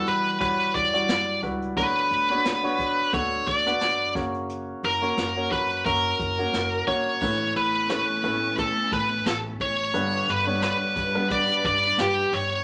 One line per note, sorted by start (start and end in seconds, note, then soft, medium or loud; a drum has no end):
0.00 1.78 B2 medium
0.00 0.40 G3 medium
0.00 0.40 E4 medium
0.00 0.40 F#4 medium
0.00 1.43 B4 medium
0.06 0.34 E3 medium
0.06 0.41 B4 medium
0.06 closed hi-hat medium
0.25 closed hi-hat soft
0.40 0.69 E2 medium
0.40 0.81 G3 medium
0.40 0.81 E4 medium
0.40 0.81 F#4 medium
0.40 0.75 B4 medium
0.40 0.81 C#5 medium
0.40 kick medium
0.40 closed hi-hat medium
0.75 1.03 E2 medium
0.75 1.39 D5 medium
0.75 kick medium
0.75 closed hi-hat medium
0.93 1.33 G3 medium
0.93 1.33 E4 medium
0.93 1.33 F#4 medium
0.93 1.33 D5 medium
0.93 closed hi-hat soft
1.08 1.36 F#2 medium
1.08 snare medium
1.08 closed hi-hat medium
1.42 1.71 C#2 medium
1.42 1.70 G3 medium
1.42 1.70 E4 medium
1.42 1.71 F#4 medium
1.42 1.71 B4 medium
1.42 kick medium
1.42 closed hi-hat medium
1.62 closed hi-hat soft
1.76 2.05 D2 medium
1.76 2.75 D3 medium
1.76 2.18 B3 medium
1.76 2.18 D4 medium
1.76 2.18 F#4 medium
1.76 3.14 B4 medium
1.76 2.18 C#5 medium
1.76 kick medium
1.76 closed hi-hat medium
1.96 closed hi-hat soft
2.11 2.39 D2 medium
2.11 closed hi-hat medium
2.30 2.56 B3 medium
2.30 2.56 D4 medium
2.30 2.56 F#4 medium
2.30 2.56 C#5 medium
2.30 closed hi-hat soft
2.45 2.73 D2 medium
2.45 snare medium
2.45 closed hi-hat medium
2.63 3.03 B3 medium
2.63 3.03 D4 medium
2.63 3.03 F#4 medium
2.63 3.04 C#5 medium
2.63 closed hi-hat soft
2.79 3.07 D3 medium
2.79 kick medium
2.79 closed hi-hat medium
2.98 closed hi-hat soft
3.13 3.41 D2 medium
3.13 3.54 B3 medium
3.13 3.54 D4 medium
3.13 3.54 F#4 medium
3.13 3.54 A4 medium
3.13 3.47 C#5 medium
3.13 kick medium
3.13 closed hi-hat medium
3.47 3.75 D2 medium
3.47 4.12 D5 medium
3.47 kick medium
3.47 closed hi-hat medium
3.66 4.06 B3 medium
3.66 4.06 D4 medium
3.66 4.06 F#4 medium
3.66 4.06 B4 medium
3.66 closed hi-hat soft
3.81 4.09 F#2 medium
3.81 snare medium
3.81 closed hi-hat medium
4.15 4.71 F#1 medium
4.15 5.13 C#3 medium
4.15 4.83 A#3 medium
4.15 4.83 C#4 medium
4.15 4.83 F#4 medium
4.15 4.83 C#5 medium
4.15 kick medium
4.15 snare soft
4.15 closed hi-hat medium
4.34 closed hi-hat soft
4.49 closed hi-hat medium
4.83 5.11 F#1 medium
4.83 5.48 A#4 medium
4.83 closed hi-hat medium
5.02 5.28 A#3 medium
5.02 5.28 C#4 medium
5.02 5.28 F#4 medium
5.02 5.28 C#5 medium
5.02 closed hi-hat soft
5.17 5.46 F#1 medium
5.17 snare loud
5.17 closed hi-hat medium
5.36 5.76 A#3 medium
5.36 5.76 C#4 medium
5.36 5.76 F#4 medium
5.36 5.76 C#5 medium
5.51 5.79 F#2 medium
5.51 5.85 B4 medium
5.51 kick medium
5.51 closed hi-hat medium
5.71 closed hi-hat soft
5.85 6.14 F#1 medium
5.85 6.26 A#3 medium
5.85 6.27 C#4 medium
5.85 6.27 F#4 medium
5.85 6.84 A#4 medium
5.85 6.27 E5 medium
5.85 kick medium
5.85 closed hi-hat medium
6.05 closed hi-hat soft
6.19 6.48 F#1 medium
6.19 kick medium
6.19 closed hi-hat medium
6.38 6.78 A#3 medium
6.38 6.78 C#4 medium
6.38 6.78 F#4 medium
6.38 6.78 C#5 medium
6.38 closed hi-hat soft
6.53 6.81 F#1 medium
6.53 snare medium
6.53 closed hi-hat medium
6.73 closed hi-hat soft
6.87 7.16 G1 medium
6.87 7.15 A#3 medium
6.87 7.15 C#4 medium
6.87 7.15 F#4 medium
6.87 7.15 C#5 medium
6.87 7.52 C#5 medium
6.87 kick medium
6.87 closed hi-hat medium
7.06 closed hi-hat soft
7.21 7.50 A1 medium
7.21 8.20 A2 medium
7.21 8.20 E3 medium
7.21 7.77 A3 medium
7.21 9.92 A3 medium
7.21 9.92 B3 medium
7.21 7.77 C#4 medium
7.21 9.92 C#4 medium
7.21 7.77 E4 medium
7.21 7.77 B4 medium
7.21 kick medium
7.21 crash medium
7.55 7.99 A1 medium
7.55 7.88 B4 medium
7.55 closed hi-hat medium
7.89 8.17 A3 medium
7.89 8.17 C#4 medium
7.89 8.18 E4 medium
7.89 8.18 B4 medium
7.89 8.55 B4 medium
7.89 snare medium
7.89 closed hi-hat medium
8.23 8.67 A1 medium
8.23 9.32 A3 medium
8.23 9.32 C#4 medium
8.23 9.32 E4 medium
8.23 9.32 B4 medium
8.23 closed hi-hat medium
8.58 8.90 A4 medium
8.58 kick medium
8.58 closed hi-hat medium
8.92 9.20 A1 medium
8.92 9.27 B4 medium
8.92 kick medium
8.92 closed hi-hat medium
9.26 9.54 A1 medium
9.26 9.36 A4 medium
9.26 snare loud
9.26 closed hi-hat medium
9.60 9.88 A1 medium
9.60 10.31 C#5 medium
9.60 kick medium
9.60 closed hi-hat medium
9.94 10.22 G1 medium
9.94 10.92 G2 medium
9.94 10.92 D3 medium
9.94 10.35 G3 medium
9.94 12.64 G3 medium
9.94 10.35 B3 medium
9.94 10.35 D4 medium
9.94 12.64 D4 medium
9.94 10.35 B4 medium
9.94 12.64 B4 medium
9.94 closed hi-hat medium
10.28 10.72 G1 medium
10.28 10.63 B4 medium
10.28 closed hi-hat medium
10.47 10.99 G3 medium
10.47 10.99 B3 medium
10.47 10.99 D4 medium
10.47 10.99 C#5 medium
10.62 11.27 B4 medium
10.62 snare loud
10.62 closed hi-hat medium
10.96 11.40 G1 medium
10.96 kick medium
10.96 closed hi-hat medium
11.15 12.22 G3 medium
11.15 12.22 B3 medium
11.15 12.22 D4 medium
11.15 12.22 B4 medium
11.30 11.65 D5 loud
11.30 kick medium
11.30 closed hi-hat medium
11.64 11.92 G1 medium
11.64 12.00 D5 medium
11.64 kick medium
11.64 closed hi-hat medium
11.98 12.26 G1 medium
11.98 12.34 G4 medium
11.98 snare loud
11.98 closed hi-hat medium
12.32 12.60 G1 medium
12.32 12.64 C#5 medium
12.32 snare soft
12.32 open hi-hat medium